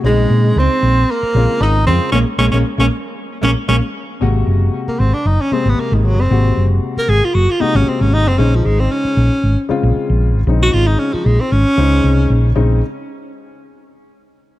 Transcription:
X:1
M:4/4
L:1/16
Q:"Swing 16ths" 1/4=115
K:Bbm
V:1 name="Tenor saxophone"
A,4 C4 B,4 E2 C2 | D z D D z D z4 D z D z3 | z4 z B, C =D E _D C _C B, E, G, =C- | C3 z2 B A F G F E D C D E C |
D F, A, C D6 z6 | z G F E D F, A, C D6- D z | z16 |]
V:2 name="Grand piano"
[D,A,CE]6 z4 [D,A,CF]4 [D,A,CF]2 | [A,B,D] z [A,B,D] [A,B,D] z [A,B,D] z4 [A,B,D] z [A,B,D] z3 | [C,A,B,G]6 z4 [C,A,B,A]6 | [C,A,B,G]6 z4 [C,A,B,G]6 |
[D,A,Ec]6 z4 [D,A,CF]6 | [D,A,CE]6 z4 [D,A,Ec]6 | [D,A,CE]2 z12 z2 |]
V:3 name="Hollow-body jazz guitar"
A,4 C4 B,4 E2 C2 | [A,B,D] z [A,B,D] [A,B,D] z [A,B,D] z4 [A,B,D] z [A,B,D] z3 | z16 | z16 |
z16 | z16 | z16 |]
V:4 name="Fingered electric bass" clef=bass
B,,,2 B,,2 D,, z B,,,2 z2 B,,, z A,,,2 F,, z | B,,, z B,,, B,,, z B,,, z4 B,,, z B,,, z3 | A,,,2 G,,,2 z2 A,,, z G,,, z2 A,,, z A,,,2 G,,, | A,,,2 G,,,2 z2 A,,, z G,,, z2 A,,, z A,,,2 G,,, |
B,,,2 A,,,2 z2 B,,, z A,,, z2 B,,, z B,,,2 A,,, | B,,,2 A,,,2 z2 B,,, z A,,, z D,,2 C,,2 B,,,2 | B,,,2 z12 z2 |]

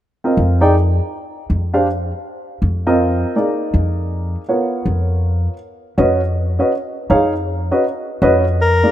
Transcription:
X:1
M:3/4
L:1/8
Q:"Swing" 1/4=161
K:Bbphr
V:1 name="Soprano saxophone"
z6 | z6 | z6 | z6 |
z6 | z6 | z6 | z4 B2 |]
V:2 name="Grand piano"
z [=CFBe]2 [EA=d=g] z2 | z3 [=D=G=cf] z2 | z3 [=CFBe]3 | [B,EA=d]4- [B,EAd] z |
[CFBd]4- [CFBd] z | z2 [DGce] z2 [DGce] | z2 [EAdf] z2 [DGce] | z2 [DGce] z2 [B,EA=d] |]
V:3 name="Upright bass" clef=bass
z2 F,,3 z | z2 F,,3 z | z2 F,,3 z | z2 F,,3 z |
z2 F,,3 z | z2 F,,3 z | z2 F,,3 z | z2 F,,3 z |]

